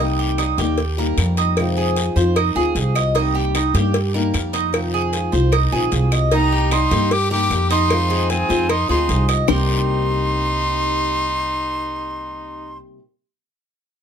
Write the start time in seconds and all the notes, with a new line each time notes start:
Already playing: C2
0.00 C3 G3 A#3 D#4 G4
0.19 G4
0.38 G3 A#3 D#4 G4, cowbell, short guiro, claves
0.58 D#2 G3 A#3 D#4 G4, cowbell, short guiro
0.78 muted steel-string acoustic guitar stroke, cowbell, long guiro
0.97 G3 A#3 D#4 G4 A#4
1.17 F2 G3 A#3 D#4 G4, cowbell, short guiro, claves
1.37 D#4, cowbell, short guiro
1.57 C3 D#3 G#3 C4 F4, cowbell, long guiro, claves
1.77 G#4
1.96 D#3 G#3 C4 F4, cowbell, short guiro
2.16 F2 D#3 G#3 C4 F4 C5, short guiro
2.36 D#4, muted steel-string acoustic guitar stroke, cowbell, long guiro, claves
2.55 D2 D#3 G#3 C4 F4 G#4
2.75 C2 D#3 G#3 C4, cowbell, short guiro
2.79 F4
2.95 D#5, cowbell, short guiro, claves
3.15 C3 G3 A#3 D#4, cowbell, long guiro
3.19 G4
3.35 G4
3.55 G3 A#3 D#4 G4, cowbell, short guiro, claves
3.74 G2 G3 A#3 D#4 G4, cowbell, short guiro
3.94 muted steel-string acoustic guitar stroke, cowbell, long guiro
4.14 G3 A#3 D#4 G4 A#4
4.33 F2 G3 A#3 D#4 G4, cowbell, short guiro, claves
4.53 D#4, cowbell, short guiro
4.73 C3 D#3 G#3 C4 F4, cowbell, long guiro, claves
4.94 G#4
5.13 D#3 G#3 C4 F4, cowbell, short guiro
5.32 C2 D#3 G#3 C4 F4 C5, short guiro
5.52 D#4, muted steel-string acoustic guitar stroke, cowbell, long guiro, claves
5.72 A#1 D#3 G#3 C4 F4 G#4
5.91 C2 D#3 G#3 C4 F4, cowbell, short guiro
6.12 D#5, cowbell, short guiro, claves
6.31 C3 G3 A#3 D#4 G4 A#5, cowbell, long guiro
6.52 G4
6.71 G3 A#3 D#4 G4 C6, cowbell, short guiro, claves
6.91 G2 G3 A#3 D#4 G4, cowbell, short guiro
7.11 G4 D6, muted steel-string acoustic guitar stroke, cowbell, long guiro
7.31 G3 A#3 D#4 G4 A#4 D6
7.50 F2 G3 A#3 D#4 G4, cowbell, short guiro, claves
7.70 D#4 C6, cowbell, short guiro
7.90 C3 D#3 G#3 C4 F4, cowbell, long guiro, claves
8.10 G#4
8.29 D#3 G#3 C4 F4 G#5, cowbell, short guiro
8.49 F2 D#3 G#3 C4 F4 C5, short guiro
8.69 D#4 C6, muted steel-string acoustic guitar stroke, cowbell, long guiro, claves
8.89 D2 D#3 G#3 C4 D#4 F4 G#4 C6
9.08 C2 D#3 G#3 C4 F4, cowbell, short guiro
9.29 D#5, cowbell, short guiro, claves
9.47 C2 C3 G3 A#3 C4 D#4 G4 A#4 C6, low bongo, long guiro, claves
9.52 G4